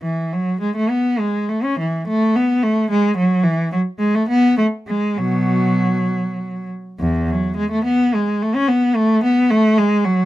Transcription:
\new Staff \with { instrumentName = "Cello" } { \clef bass \time 6/8 \key fis \dorian \tempo 4. = 70 << { e8 fis8 gis16 a16 b8 gis8 a16 cis'16 | e8 a8 b8 a8 gis8 fis8 | e8 fis8 gis16 a16 b8 a8 gis8 | fis2~ fis8 r8 |
e,8 fis8 gis16 a16 b8 gis8 a16 cis'16 | b8 a8 b8 a8 gis8 fis8 | } \\ { r2. | r2. | r2. | b,4. r4. |
r2. | r2. | } >> }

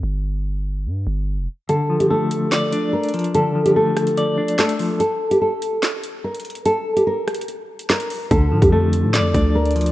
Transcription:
<<
  \new Staff \with { instrumentName = "Nylon-string guitar" } { \time 4/4 \key d \minor \tempo 4 = 145 r1 | a'8. g'16 a'2 bes'4 | a'8. g'16 a'2 a'4 | a'8. g'16 a'2 bes'4 |
a'8. g'16 bes'2 bes'4 | a'8. g'16 a'2 bes'4 | }
  \new Staff \with { instrumentName = "Clean electric guitar" } { \time 4/4 \key d \minor r1 | d8 f8 a4 d''8 d'4 f8 | d8 f8 a4 d''8 d'8 a8 f8 | r1 |
r1 | d8 f8 a4 d''8 d'4 f8 | }
  \new Staff \with { instrumentName = "808-style bass" } { \clef bass \time 4/4 \key d \minor g,,2 g,8 g,,8. f,,16 r8 | r1 | r1 | r1 |
r1 | d,8 a,16 f,4 a,16. f,16. d,4. | }
  \new DrumStaff \with { instrumentName = "Drums" } \drummode { \time 4/4 r4 r4 r4 r4 | hh8. hh16 r8 hh8 <hc hh sn>8 hh8 r16 hh32 hh32 hh32 hh32 hh16 | hh8. hh16 r8 <hh ss>16 hh16 hh8. hh16 <hc sn>16 hh16 hho8 | hh8. hh16 r8 hh8 <hc hh sn>8 hh8 r16 hh32 hh32 hh32 hh32 hh16 |
hh8. hh16 \tuplet 3/2 { r16 r16 r16 <hh ss>16 hh16 hh16 } hh8. hh16 <hc sn>16 hh16 hho8 | <hh bd>8. <hh bd>16 r8 hh8 <hc hh sn>8 <hh bd>8 r16 hh32 hh32 hh32 hh32 hh16 | }
>>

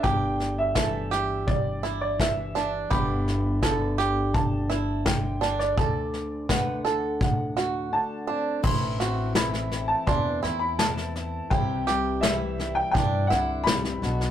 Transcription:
<<
  \new Staff \with { instrumentName = "Upright piano" } { \time 4/4 \key a \dorian \tempo 4 = 84 g''8. e''16 e''4 d''8. d''16 e''8. r16 | b''2 a''4 g''8. d''16~ | d''4 fis''4 fis''4 a''4 | c'''4 b''8. a''16 c'''8. b''16 a''4 |
g''4 e''8. g''16 g''8 fis''8 b''4 | }
  \new Staff \with { instrumentName = "Five-string banjo" } { \time 4/4 \key a \dorian g'4 a'8 g'4 e'4 d'8 | g'4 a'8 g'4 e'4 d'8 | a'4 b'8 a'4 fis'4 d'8 | e'8 fis'8 e'4 d'8 e'4 r8 |
e'8 g'8 e'4 d'8 e'4 r8 | }
  \new Staff \with { instrumentName = "Steel-string acoustic guitar" } { \time 4/4 \key a \dorian r1 | r1 | r1 | <a, e a c' e'>4 <e c' e'>8 <a c' e'>8 <e a c' e'>8 <a c' e'>8 <e a c'>4 |
<c e g c' e'>4 <e g e'>8 <g c' e'>8 <e g c' e'>8 <g c' e'>8 <e g c' e'>8 <b, fis b d' fis'>8 | }
  \new Staff \with { instrumentName = "Steel-string acoustic guitar" } { \clef bass \time 4/4 \key a \dorian << { r4 g2~ g8 d'8 | <d b d' e'>4 b2. | r4 a2~ a8 c'8 | e'8 c'4 e'4 e'8 e'8 e'8 |
g'8 g4 e'2 fis'8 | } \\ { <g, d>4 e4 g,4 e4 | g,4 d4 d,4 d4 | d,4 d4 a,4 d4 | a,4 e4 e,2 |
c4 e4 g,8 d8 c8 b,8 | } >> }
  \new Staff \with { instrumentName = "Upright bass" } { \clef bass \time 4/4 \key a \dorian g,,1 | g,,1 | d,2. r4 | a,,2 e,8 e,4. |
c,2 g,8 c,4 b,,8 | }
  \new DrumStaff \with { instrumentName = "Drums" } \drummode { \time 4/4 <bd sn>8 sn8 <bd sn>8 sn8 <bd sn>8 sn8 <bd sn>8 sn8 | <bd sn>8 sn8 <bd sn>8 sn8 <bd sn>8 sn8 <bd sn>8 sn16 sn16 | <bd sn>8 sn8 <bd sn>8 sn8 <bd sn>8 sn8 r4 | <cymc bd sn>8 sn8 sn16 sn16 sn8 <bd sn>8 sn8 sn16 sn16 sn8 |
<bd sn>8 sn8 sn8 sn8 <bd sn>8 sn8 sn16 sn16 sn16 sn16 | }
>>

